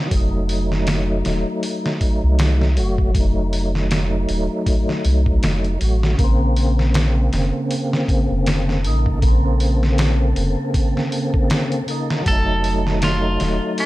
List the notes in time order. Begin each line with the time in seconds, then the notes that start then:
0.07 F#3
0.11 F1 A3, kick, open hi-hat
0.17 D#4
0.49 open hi-hat
0.72 snare
0.87 snare, open hi-hat
1.25 D#1, snare, open hi-hat
1.63 open hi-hat
1.86 snare
2.01 kick, open hi-hat
2.23 C2
2.39 snare, open hi-hat
2.62 snare
2.75 F1 F#3 A3, open hi-hat
2.79 F#4
2.98 kick
3.10 F#3
3.15 F1 A3, kick, open hi-hat
3.20 D#4
3.53 open hi-hat
3.75 snare
3.91 snare, open hi-hat
4.29 D#1, open hi-hat
4.66 kick, open hi-hat
4.89 snare
5.05 C2, open hi-hat
5.26 kick
5.43 F1, snare, open hi-hat
5.64 closed hi-hat
5.79 A1 F#3 A3, open hi-hat
5.83 F#4
6.03 snare
6.15 C#3, kick, open hi-hat
6.19 A#1 A#3 A4
6.24 C4
6.56 open hi-hat
6.79 snare
6.94 snare, open hi-hat
7.33 F1, snare, open hi-hat
7.71 open hi-hat
7.93 snare
8.08 kick, open hi-hat
8.30 F1
8.46 snare, open hi-hat
8.69 snare
8.82 A#1 C#3 A#3, open hi-hat
8.87 D#4
9.06 kick
9.18 C#3
9.22 A#1 A#3, kick, open hi-hat
9.27 C4
9.60 open hi-hat
9.83 snare
9.98 snare, open hi-hat
10.36 F1, open hi-hat
10.74 kick, open hi-hat
10.97 snare
11.12 open hi-hat
11.34 kick
11.50 snare, open hi-hat
11.72 closed hi-hat
11.86 C#3 A#3, open hi-hat
11.91 D#4
12.10 snare
12.22 F#3
12.26 F1 A3 A4, kick, open hi-hat
12.31 D#4
12.64 open hi-hat
12.87 snare
13.02 F4, snare, open hi-hat
13.40 D#1, snare, open hi-hat
13.78 D#4, open hi-hat